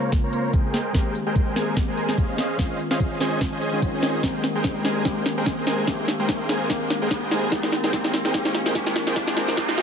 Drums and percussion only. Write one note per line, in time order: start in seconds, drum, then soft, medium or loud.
0.12 kick loud
0.12 snare medium
0.12 closed hi-hat medium
0.33 closed hi-hat medium
0.53 kick loud
0.53 closed hi-hat medium
0.74 snare medium
0.74 closed hi-hat medium
0.94 kick loud
0.94 snare medium
0.94 closed hi-hat medium
1.15 closed hi-hat medium
1.36 kick loud
1.36 closed hi-hat medium
1.56 snare medium
1.56 closed hi-hat medium
1.77 kick loud
1.77 snare medium
1.77 closed hi-hat medium
1.97 closed hi-hat medium
2.09 snare medium
2.18 kick medium
2.18 closed hi-hat medium
2.38 snare medium
2.38 closed hi-hat medium
2.59 kick loud
2.59 snare medium
2.59 closed hi-hat medium
2.79 closed hi-hat medium
2.91 snare medium
3.00 kick loud
3.00 closed hi-hat medium
3.21 snare medium
3.21 closed hi-hat medium
3.41 kick loud
3.41 snare medium
3.41 closed hi-hat medium
3.62 closed hi-hat medium
3.82 kick medium
3.82 closed hi-hat medium
4.03 snare medium
4.03 closed hi-hat medium
4.23 kick loud
4.23 snare medium
4.23 closed hi-hat medium
4.44 snare medium
4.44 closed hi-hat medium
4.64 kick loud
4.64 snare medium
4.64 closed hi-hat medium
4.85 snare medium
4.85 open hi-hat medium
5.05 kick loud
5.05 snare medium
5.05 closed hi-hat medium
5.26 snare medium
5.26 closed hi-hat medium
5.46 kick loud
5.46 snare medium
5.46 closed hi-hat medium
5.67 snare medium
5.67 closed hi-hat medium
5.87 kick loud
5.87 snare medium
5.87 closed hi-hat medium
6.08 snare medium
6.08 closed hi-hat medium
6.29 kick loud
6.29 snare medium
6.29 closed hi-hat medium
6.49 snare medium
6.49 open hi-hat medium
6.70 kick loud
6.70 snare medium
6.70 closed hi-hat medium
6.90 snare medium
6.90 closed hi-hat medium
7.11 kick loud
7.11 snare medium
7.11 closed hi-hat medium
7.31 snare medium
7.31 closed hi-hat medium
7.52 kick loud
7.52 snare medium
7.52 closed hi-hat medium
7.63 snare medium
7.72 snare medium
7.72 closed hi-hat medium
7.84 snare medium
7.93 kick loud
7.93 snare loud
7.93 closed hi-hat medium
8.04 snare medium
8.14 snare loud
8.14 open hi-hat loud
8.25 snare medium
8.34 kick loud
8.34 snare loud
8.34 closed hi-hat medium
8.45 snare medium
8.55 snare loud
8.55 closed hi-hat medium
8.66 snare medium
8.75 kick loud
8.75 snare loud
8.75 closed hi-hat medium
8.87 snare medium
8.96 snare loud
8.96 closed hi-hat medium
9.07 snare medium
9.16 kick loud
9.16 snare loud
9.16 closed hi-hat medium
9.27 snare medium
9.37 snare loud
9.37 closed hi-hat medium
9.48 snare medium
9.57 kick loud
9.57 snare loud
9.57 closed hi-hat medium
9.69 snare medium
9.78 snare loud
9.78 open hi-hat loud